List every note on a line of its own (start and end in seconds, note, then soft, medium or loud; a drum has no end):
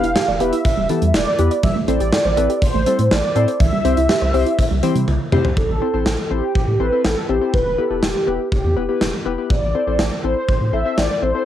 0.00 0.14 E1 loud
0.00 0.12 E4 medium
0.00 0.42 F5 loud
0.00 closed hi-hat medium
0.16 0.25 G4 medium
0.16 snare loud
0.28 0.39 E1 loud
0.28 0.37 D5 medium
0.40 0.51 E1 medium
0.40 0.53 B3 medium
0.40 0.53 E4 medium
0.40 0.53 G4 medium
0.40 0.49 G4 medium
0.40 0.53 B4 medium
0.40 0.64 E5 medium
0.40 closed hi-hat medium
0.53 0.61 E4 medium
0.53 closed hi-hat medium
0.65 0.88 E5 medium
0.65 kick loud
0.65 closed hi-hat medium
0.77 0.88 E1 loud
0.77 0.86 G3 medium
0.89 0.98 E3 medium
0.89 1.03 B3 medium
0.89 1.03 E4 medium
0.89 1.03 G4 medium
0.89 1.03 A4 medium
0.89 closed hi-hat medium
1.02 1.12 E2 loud
1.02 1.11 G3 medium
1.02 closed hi-hat medium
1.07 1.14 E5 medium
1.14 1.25 E1 loud
1.14 1.65 D5 loud
1.14 snare loud
1.39 1.49 E2 loud
1.39 1.52 B3 medium
1.39 1.52 E4 medium
1.39 1.47 G4 medium
1.39 1.52 G4 medium
1.39 1.52 B4 medium
1.39 closed hi-hat medium
1.51 1.60 D5 medium
1.51 closed hi-hat medium
1.63 1.74 A1 loud
1.63 1.72 G3 medium
1.63 1.75 E5 loud
1.63 kick loud
1.63 closed hi-hat medium
1.76 1.84 A3 medium
1.88 1.98 A1 loud
1.88 1.97 C4 medium
1.88 2.01 C4 medium
1.88 2.01 E4 medium
1.88 2.01 A4 medium
1.88 2.01 C5 medium
1.88 2.64 D5 loud
1.88 closed hi-hat medium
2.00 2.11 A1 loud
2.00 2.09 G4 medium
2.00 closed hi-hat medium
2.13 2.21 A4 medium
2.13 snare loud
2.25 2.35 A1 medium
2.25 2.34 C5 medium
2.37 2.48 A1 loud
2.37 2.50 C4 medium
2.37 2.50 E4 medium
2.37 2.46 A4 medium
2.37 2.50 A4 medium
2.37 2.50 B4 medium
2.37 closed hi-hat medium
2.50 2.58 G4 medium
2.50 closed hi-hat medium
2.62 3.12 C5 loud
2.62 kick loud
2.62 closed hi-hat medium
2.74 2.84 A1 loud
2.74 2.83 A3 medium
2.86 2.95 G3 medium
2.86 2.99 C4 medium
2.86 2.99 E4 medium
2.86 2.99 A4 medium
2.86 2.99 C5 medium
2.86 closed hi-hat medium
2.99 3.09 A2 loud
2.99 3.07 A3 medium
2.99 closed hi-hat medium
3.11 3.21 A1 loud
3.11 3.62 D5 loud
3.11 snare loud
3.36 3.46 A2 loud
3.36 3.49 C4 medium
3.36 3.49 E4 medium
3.36 3.49 A4 medium
3.36 3.44 A4 medium
3.36 3.49 C5 medium
3.36 closed hi-hat medium
3.48 3.57 C5 medium
3.48 closed hi-hat medium
3.60 3.70 C2 loud
3.60 3.69 E3 medium
3.60 5.28 E5 loud
3.60 kick loud
3.60 closed hi-hat medium
3.73 3.81 G3 medium
3.85 3.95 C2 loud
3.85 3.98 C4 medium
3.85 3.94 C4 medium
3.85 3.98 E4 medium
3.85 3.98 G4 medium
3.85 3.98 C5 medium
3.85 closed hi-hat medium
3.97 4.07 C2 loud
3.97 4.06 E4 medium
3.97 closed hi-hat medium
4.09 4.18 G4 medium
4.09 snare loud
4.22 4.32 C2 loud
4.22 4.30 C5 medium
4.34 4.44 C2 loud
4.34 4.47 C4 medium
4.34 4.47 E4 medium
4.34 4.47 G4 medium
4.34 4.43 G4 medium
4.34 4.47 C5 loud
4.34 open hi-hat medium
4.46 4.55 E4 medium
4.46 closed hi-hat medium
4.59 kick loud
4.59 closed hi-hat medium
4.71 4.81 C2 loud
4.71 4.79 G3 medium
4.83 4.92 E3 medium
4.83 4.96 C4 medium
4.83 4.96 E4 medium
4.83 4.96 G4 medium
4.83 4.96 C5 loud
4.83 closed hi-hat medium
4.95 5.06 C3 medium
4.95 5.04 G3 medium
4.95 closed hi-hat medium
5.08 5.18 C2 loud
5.08 high tom medium
5.32 5.43 C3 loud
5.32 5.45 C4 medium
5.32 5.45 E4 medium
5.32 5.41 G4 medium
5.32 5.45 G4 medium
5.32 5.45 C5 loud
5.32 mid tom medium
5.45 5.53 C5 medium
5.45 floor tom loud
5.57 5.67 A1 loud
5.57 6.23 A4 loud
5.57 kick loud
5.69 5.80 A1 loud
5.82 5.88 C4 medium
5.82 5.88 E4 medium
5.82 5.88 A4 medium
5.82 5.88 C5 medium
5.94 6.04 A1 loud
5.94 6.07 C4 medium
5.94 6.07 E4 medium
5.94 6.07 A4 medium
5.94 6.07 C5 medium
6.06 6.16 A1 loud
6.06 snare loud
6.24 6.31 A4 medium
6.30 6.41 A1 loud
6.30 6.44 C4 medium
6.30 6.44 E4 medium
6.30 6.81 G4 loud
6.30 6.44 A4 medium
6.30 6.44 C5 medium
6.55 6.66 A1 loud
6.55 kick loud
6.68 6.78 A2 medium
6.80 6.90 A1 loud
6.80 6.86 C4 medium
6.80 6.86 E4 medium
6.80 6.86 A4 medium
6.80 7.03 B4 loud
6.80 6.86 C5 medium
6.92 7.05 C4 medium
6.92 7.05 E4 medium
6.92 7.05 A4 medium
6.92 7.05 C5 medium
7.04 7.15 A1 loud
7.04 7.30 A4 loud
7.04 snare loud
7.29 7.39 A1 medium
7.29 7.36 C4 medium
7.29 7.36 E4 medium
7.29 7.54 G4 medium
7.29 7.36 A4 medium
7.29 7.36 C5 medium
7.41 7.54 C4 medium
7.41 7.54 E4 medium
7.41 7.54 A4 medium
7.41 7.54 C5 medium
7.53 7.64 E1 loud
7.53 7.79 B4 loud
7.53 kick loud
7.66 7.76 E1 medium
7.78 7.85 B3 medium
7.78 7.85 E4 medium
7.78 7.85 G4 medium
7.78 8.03 A4 loud
7.78 7.85 B4 medium
7.90 8.01 E1 medium
7.90 8.03 B3 medium
7.90 8.03 E4 medium
7.90 8.03 G4 medium
7.90 8.03 B4 medium
8.03 8.13 E1 loud
8.03 8.48 G4 medium
8.03 snare loud
8.27 8.38 E1 loud
8.27 8.40 B3 medium
8.27 8.40 E4 medium
8.27 8.40 G4 medium
8.27 8.40 B4 medium
8.52 8.62 E1 loud
8.52 9.22 G4 medium
8.52 kick loud
8.64 8.74 E2 loud
8.76 8.87 E1 loud
8.76 8.83 B3 medium
8.76 8.83 E4 medium
8.76 8.83 G4 medium
8.76 8.83 B4 medium
8.89 9.02 B3 medium
8.89 9.02 E4 medium
8.89 9.02 G4 medium
8.89 9.02 B4 medium
9.01 9.11 E1 loud
9.01 snare loud
9.26 9.36 E1 loud
9.26 9.32 B3 medium
9.26 9.32 E4 medium
9.26 9.32 G4 medium
9.26 9.32 B4 loud
9.38 9.50 B3 medium
9.38 9.50 E4 medium
9.38 9.50 G4 medium
9.38 9.50 B4 medium
9.50 9.60 A1 loud
9.50 10.20 D5 loud
9.50 kick loud
9.63 9.73 A1 medium
9.75 9.81 C4 medium
9.75 9.81 E4 medium
9.75 9.81 A4 medium
9.75 9.81 C5 medium
9.87 9.98 A1 medium
9.87 10.00 C4 medium
9.87 10.00 E4 medium
9.87 10.00 A4 medium
9.87 10.00 C5 medium
9.99 10.10 A1 loud
9.99 snare loud
10.24 10.34 A1 loud
10.24 10.37 C4 medium
10.24 10.37 E4 medium
10.24 10.37 A4 medium
10.24 10.75 C5 loud
10.24 10.37 C5 medium
10.48 10.59 A1 loud
10.48 kick loud
10.61 10.71 A2 loud
10.73 10.83 A1 loud
10.73 10.80 C4 medium
10.73 10.80 E4 medium
10.73 10.80 A4 medium
10.73 10.80 C5 medium
10.73 10.99 E5 loud
10.85 10.98 C4 medium
10.85 10.98 E4 medium
10.85 10.98 A4 medium
10.85 10.98 C5 medium
10.98 11.08 A1 loud
10.98 11.21 D5 loud
10.98 snare loud
11.22 11.33 A1 medium
11.22 11.29 C4 medium
11.22 11.29 E4 medium
11.22 11.29 A4 medium
11.22 11.29 C5 medium
11.22 11.45 C5 medium
11.35 11.45 C4 medium
11.35 11.45 E4 medium
11.35 11.45 A4 medium
11.35 11.45 C5 medium